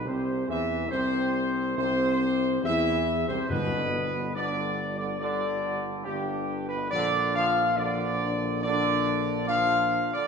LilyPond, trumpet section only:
\new Staff \with { instrumentName = "Trumpet section" } { \time 4/4 \key c \major \tempo 4 = 70 c''8 e''8 c''4 c''4 e''8. c''16 | b'4 d''8. d''16 d''4 g'8. b'16 | d''8 f''8 d''4 d''4 f''8. d''16 | }